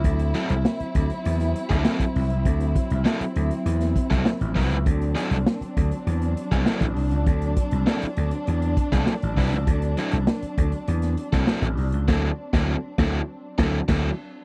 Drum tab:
CC |----------------|----------------|----------------|----------------|
HH |xxxx-xxxxxxx-xox|xxxx-xxxxxxx-xox|xxxx-xxxxxxx-xox|xxxx-xxxxxxx-xox|
SD |----o----o--o---|----o----o--o---|----o-------o---|----o------oo---|
BD |o-----o----o-o--|o-o-------oo--o-|o-----o----o-o--|o-o-------oo--o-|

CC |----------------|x-----------x---|
HH |xxxx-xxxxxxx-xox|----------------|
SD |----o----o-oo---|o--o--o---o-o---|
BD |o-----o----o-o--|o--o--o---o-o---|